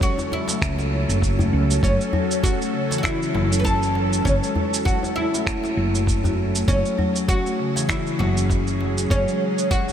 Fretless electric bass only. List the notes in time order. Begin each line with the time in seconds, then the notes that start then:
0.62 C#2
1.09 F#1
1.53 C#2
1.83 F#1
3.35 F#1
4.25 F#1
5.77 F#1
6.68 F#1
8.20 F#1
9.11 F#1